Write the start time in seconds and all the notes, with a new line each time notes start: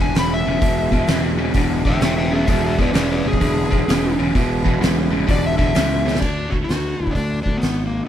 Already playing: E4 G#4 B4
0.00 E1 E2 D3 G#5
0.15 E1 E2 C#3 B5, snare, open hi-hat
0.34 E5
0.46 E1 E2 C#3
0.61 E1 E2 B2, kick, open hi-hat
0.92 E2 B2, kick
1.07 E1 E2 C#3, snare, open hi-hat
1.37 E2 C#3
1.54 E1 E2 D3, kick, open hi-hat
1.85 E1 E2 D3 E5 G5, kick
2.01 E1 E2 C#3 E5 G5, snare, open hi-hat
2.18 E5 G5
2.31 E2 C#3 G#4 E5
2.45 E1 E2 B2 C4 F4 G#4 A4, kick, open hi-hat
2.51 E5
2.58 B3 E4 G#4
2.65 G#4 E5
2.79 E2 B2 B4 D5, kick
2.93 E1 E2 C#3 B4 D5, snare, open hi-hat
3.12 B4 D5
3.24 E1 E2 C#3 G#4
3.33 kick
3.40 E1 E2 D3, kick, open hi-hat
3.70 E1 E2 D3, kick
3.88 E1 E2 C#3, snare, open hi-hat
4.18 E1 E2 C#3
4.35 E1 E2 B2, kick, open hi-hat
4.64 E2 B2, kick
4.80 E1 E2 C#3, snare, open hi-hat
5.10 E2 C#3
5.27 E1 E2 D3 D5, kick, open hi-hat
5.46 E5
5.57 E1 E2 D3 E5, kick
5.75 C#2 E2 C#3, snare, open hi-hat
6.05 E2 C#3, snare
6.15 snare
6.20 D2 D4, kick, crash
6.50 D2 F#4, kick
6.64 F#4
6.69 D2, snare, open hi-hat
7.00 D2
7.07 kick
7.11 D4, kick
7.15 D2, open hi-hat
7.43 D2 D4, kick
7.57 B3
7.62 G#1, snare, open hi-hat
7.87 A#3